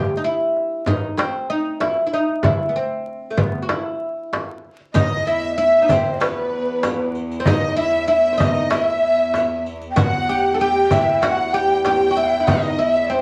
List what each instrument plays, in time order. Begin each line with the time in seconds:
Already playing: oud G4
0.09 darbuka ka
0.17 oud D#4
0.24 oud E4
0.41 darbuka ka
0.56 darbuka ka
0.86 oud D#4, frame drum
1.17 oud C4, darbuka tek, frame drum
1.50 oud D#4
1.80 oud E4, darbuka tek, frame drum
1.97 darbuka ka
2.07 oud E4
2.12 oud D#4, darbuka ka
2.29 darbuka ka
2.43 oud E4, frame drum, darbuka dum
2.60 darbuka ka
2.69 oud B3
2.76 oud C4, darbuka ka
3.07 darbuka ka
3.30 oud A3
3.37 oud B3, frame drum, darbuka dum
3.62 oud F#4
3.69 oud E4, darbuka tek, frame drum
4.33 darbuka tek, frame drum
4.49 darbuka ka
4.65 darbuka ka
4.81 darbuka ka
4.94 cello section E2, oud D#4, ney D#5, violin section D#5, riq, frame drum, darbuka dum
5.12 darbuka ka
5.27 oud E4, violin section E5
5.57 oud E4, ney E5, violin section E5, riq, darbuka ka
5.82 oud D#4
5.89 oud C4, violin section C5, riq, darbuka dum, frame drum
6.20 oud B3, ney B4, violin section B4, riq, darbuka tek, frame drum
6.53 darbuka ka
6.83 riq, darbuka tek, frame drum
7.15 riq
7.31 riq
7.40 oud C4
7.46 oud D#4, ney D#5, violin section D#5, riq, darbuka dum, frame drum
7.62 darbuka ka
7.77 oud E4, violin section E5, ney E5
8.08 oud E4, violin section E5, ney E5, riq, darbuka ka
8.33 oud C4
8.38 oud D#4, violin section D#5, ney D#5, riq, darbuka dum, frame drum
8.70 oud E4, violin section E5, ney E5, riq, darbuka tek, frame drum
9.03 darbuka ka
9.34 ney E5, riq, darbuka tek, frame drum
9.66 riq
9.82 riq
9.91 ney G5
9.96 cello section E2, oud F#4, violin section F#5, ney F#5, riq, frame drum, darbuka dum
10.12 darbuka ka
10.28 oud G4, ney G5
10.54 oud A4
10.59 oud G4, violin section G5, ney G5, riq, darbuka ka
10.91 oud E4, violin section E5, riq, frame drum, darbuka dum
11.22 oud F#4, ney F#5, violin section F#5, riq, darbuka tek, frame drum
11.53 oud G4, violin section G5, ney G5, darbuka ka
11.85 oud G4, ney G5, violin section G5, riq, darbuka tek, frame drum
12.11 oud F#4
12.16 oud E4, ney E5, riq
12.32 riq
12.40 oud E4
12.47 oud D#4, violin section D#5, ney D#5, riq, frame drum, darbuka dum
12.63 riq, darbuka ka
12.79 oud E4, violin section E5, riq, darbuka ka
12.94 riq, darbuka ka
13.10 oud C4, ney C5, violin section C5, darbuka ka